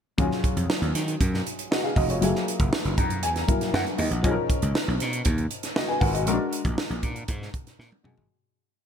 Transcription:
0.18 D#2 F#3 C#4 F4 G#4, kick, closed hi-hat
0.31 snare
0.44 kick, closed hi-hat
0.56 F2, closed hi-hat
0.70 snare
0.82 D#2, closed hi-hat
0.95 D#3, snare, closed hi-hat
1.08 closed hi-hat
1.21 F#2, kick, closed hi-hat
1.34 snare
1.47 closed hi-hat
1.59 closed hi-hat
1.71 F#4 D#5, snare
1.84 G#4 F5
1.96 F1 F#4 D#5, kick, open hi-hat
2.10 F4 C#5, closed hi-hat
2.21 F#1 F#3 A3 E4 G#4, closed hi-hat
2.27 A#3
2.35 snare
2.48 closed hi-hat
2.60 F#1, kick, closed hi-hat
2.73 snare
2.85 F#1, closed hi-hat
2.98 F#2 A#5, kick, closed hi-hat
3.10 closed hi-hat
3.23 E2 G#5, closed hi-hat
3.36 snare, closed hi-hat
3.47 F#3 A#3 E4 A#4, kick, closed hi-hat
3.61 snare, closed hi-hat
3.74 F#2 F#5, snare
3.87 closed hi-hat
3.98 D#2 D#5, open hi-hat
4.11 A#1, closed hi-hat
4.23 B1 F3 C#4 D#4 G#4, kick, closed hi-hat
4.31 A#4
4.50 kick, closed hi-hat
4.62 C#2, closed hi-hat
4.75 snare
4.88 B1
5.00 B2, snare, closed hi-hat
5.13 closed hi-hat
5.25 D#2, kick, closed hi-hat
5.38 closed hi-hat
5.51 closed hi-hat
5.63 snare, closed hi-hat
5.76 F#4 D#5, snare
5.88 B4 G#5
6.01 G#1 A#4 F#5, kick, open hi-hat
6.14 F#4 D#5, closed hi-hat
6.26 A#1 G#3 C#4 F#4 A#4, closed hi-hat
6.33 D4
6.53 closed hi-hat
6.65 A#1, kick, closed hi-hat
6.78 snare
6.90 A#1, closed hi-hat
7.03 A#2, kick, closed hi-hat
7.16 closed hi-hat
7.28 G#2, kick, closed hi-hat
7.42 snare
7.54 kick, closed hi-hat
7.67 snare, closed hi-hat
7.79 A#2, snare
7.92 high tom
8.03 F#2 G#3 D4 F#4 G#4, mid tom
8.17 G#1, floor tom

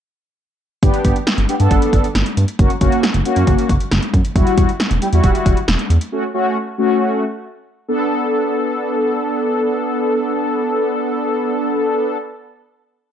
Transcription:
0.83 G1 B3 D4 G4, kick, closed hi-hat
0.94 closed hi-hat
1.05 G1, kick, closed hi-hat
1.16 closed hi-hat
1.27 snare, closed hi-hat
1.38 G1, closed hi-hat
1.49 B3 D4 G4, closed hi-hat
1.60 G2 B3 D4 A4, closed hi-hat
1.71 G1, kick, closed hi-hat
1.82 closed hi-hat
1.93 G1, kick, closed hi-hat
2.04 closed hi-hat
2.15 G1, snare, closed hi-hat
2.26 closed hi-hat
2.37 G2, closed hi-hat
2.48 closed hi-hat
2.59 F#1 A#3 C#4 F#4, kick, closed hi-hat
2.70 closed hi-hat
2.81 F#1 A#3 C#4 F#4, kick, closed hi-hat
2.92 closed hi-hat
3.03 snare, closed hi-hat
3.14 F#1, closed hi-hat
3.25 A#3 C#4 F#4, closed hi-hat
3.36 F#2, closed hi-hat
3.47 F#1, kick, closed hi-hat
3.59 closed hi-hat
3.69 F#1, kick, closed hi-hat
3.80 closed hi-hat
3.91 F#1, snare, closed hi-hat
4.03 closed hi-hat
4.14 F#2, kick, closed hi-hat
4.25 closed hi-hat
4.35 E1 G3 E4 F#4, kick, closed hi-hat
4.47 closed hi-hat
4.58 E1, kick, closed hi-hat
4.69 closed hi-hat
4.80 snare, closed hi-hat
4.91 E1, closed hi-hat
5.02 G3 E4 G4, closed hi-hat
5.13 E2 G3 E4 F#4, closed hi-hat
5.24 E1, kick, closed hi-hat
5.35 closed hi-hat
5.46 E1, kick, closed hi-hat
5.57 closed hi-hat
5.68 E1, snare, closed hi-hat
5.79 closed hi-hat
5.90 E2, closed hi-hat
6.01 closed hi-hat
6.12 A3 C#4 F#4
6.34 A3 C#4 F#4
6.78 A3 C#4 F#4
7.88 B3 D4 A4

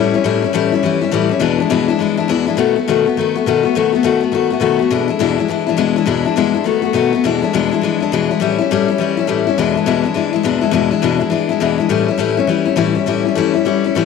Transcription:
Already playing: A2 E3 G3 C#4 E4
0.14 G3 C#4 E4
0.24 A2 E3 G3 C#4 E4
0.42 G3 C#4 E4
0.53 A2 E3 G3 C#4 E4
0.72 G3 C#4 E4
0.83 E3 G3 C#4 E4
1.01 G3 C#4 E4
1.11 A2 E3 G3 C#4 E4
1.29 G3 C#4 E4
1.39 E2 B2 E3 G#3 D4 E4
1.58 G#3 D4 E4
1.62 E3
1.70 E2 B2 E3 G#3 D4 E4
1.88 E3 G#3 D4 E4
1.99 E3 G#3 D4 E4
2.17 E3 G#3 D4 E4
2.28 E2 B2 E3 G#3 D4 E4
2.46 E3 G#3 D4 E4
2.57 B2 D#3 A3 B3 F#4
2.76 A3 B3 F#4
2.88 B2 D#3 A3 B3 F#4
3.06 A3 B3 F#4
3.17 D#3 A3 B3 F#4
3.35 A3 B3 F#4
3.46 B2 D#3 A3 B3 F#4
3.63 A3 B3 F#4
3.75 B2 D#3 A3 B3 F#4
3.93 A3 B3 F#4
4.03 B2 D#3 A3 B3 F#4
4.21 A3 B3 F#4
4.32 D#3 A3 B3 F#4
4.50 A3 B3 F#4
4.60 B2 D#3 A3 B3 F#4
4.79 A3 B3 F#4
4.91 E2 B2 E3 G#3 D4 E4
5.08 E3 G#3 D4 E4
5.19 E2 B2 E3 G#3 D4 E4
5.38 E3 G#3 D4 E4
5.48 E3 G#3 D4 E4
5.67 E3 G#3 D4 E4
5.77 E2 B2 E3 G#3 D4 E4
5.96 E3 G#3 D4 E4
6.06 E2 B2 E3 G#3 D4 E4
6.25 E3 G#3 D4 E4
6.36 E2 B2 E3 G#3 D4 E4
6.53 E3 G#3 D4 E4
6.64 D#3 A3 B3 F#4
6.82 A3 B3 F#4
6.93 B2 D#3 A3 B3 F#4
7.13 A3 B3 F#4
7.24 E2 B2 E3 G#3 D4 E4
7.42 E3 G#3 D4 E4
7.53 E2 B2 E3 G#3 D4 E4
7.71 E3 G#3 D4 E4
7.81 E3 G#3 D4 E4
8.00 E3 G#3 D4 E4
8.12 E2 B2 E3 G#3 D4 E4
8.31 E3 G#3 D4 E4
8.40 A2 E3 G3 C#4 E4
8.58 G3 C#4 E4
8.71 A2 E3 G3 C#4 E4
8.88 G3 C#4 E4
8.98 E3 G3 C#4 E4
9.17 G3 C#4 E4
9.27 A2 E3 G3 C#4 E4
9.47 G3 C#4 E4
9.58 E2 B2 E3 G#3 D4 E4
9.75 E3 G#3 D4 E4
9.86 E2 B2 E3 G#3 D4 E4
10.03 E3 G#3 D4 E4
10.14 E3 G#3 D4 E4
10.33 E3 G#3 D4 E4
10.43 E2 B2 E3 G#3 D4 E4
10.61 E3 G#3 D4 E4
10.71 E2 B2 E3 G#3 D4 E4
10.91 E3 G#3 D4 E4
11.02 E2 B2 E3 G#3 D4 E4
11.18 E3 G#3 D4 E4
11.30 E3 G#3 D4 E4
11.49 E3 G#3 D4 E4
11.60 E2 B2 E3 G#3 D4 E4
11.78 E3 G#3 D4 E4
11.89 A2 E3 G3 C#4 E4
12.08 G3 C#4 E4
12.18 A2 E3 G3 C#4 E4
12.37 G3 C#4 E4
12.47 E3 G3 C#4 E4
12.65 G3 C#4 E4
12.76 A2 E3 G3 C#4 E4
12.95 G3 C#4 E4
13.06 A2 E3 G3 C#4 E4
13.25 G3 C#4 E4
13.35 A2 E3 G3 C#4 E4
13.54 G3 C#4 E4
13.65 E3 G3 C#4 E4
13.84 G3 C#4 E4
13.95 A2 E3 G3 C#4 E4

